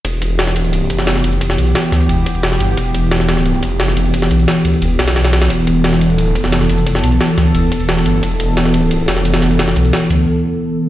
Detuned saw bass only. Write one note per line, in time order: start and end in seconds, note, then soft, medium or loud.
0.05 0.89 E1 medium
0.90 1.23 F1 loud
1.24 1.57 F1 medium
1.58 1.74 B1 loud
1.92 2.08 D2 medium
2.09 2.59 E1 loud
2.60 2.76 G1 loud
2.77 3.61 E1 medium
3.63 3.95 F1 loud
3.97 4.29 F1 loud
4.31 4.47 B1 medium
4.65 4.81 D2 medium
4.82 4.98 E1 loud
4.99 5.49 B1 medium
5.50 6.09 E1 medium
6.09 6.34 D#1 medium
6.35 6.68 F1 medium
6.70 7.02 F1 medium
7.04 7.19 B1 medium
7.38 7.53 D2 loud
7.55 8.04 E1 loud
8.06 8.22 G1 loud
9.08 9.41 F1 medium
9.42 9.75 F1 loud
9.76 9.92 B1 loud
10.10 10.26 D2 medium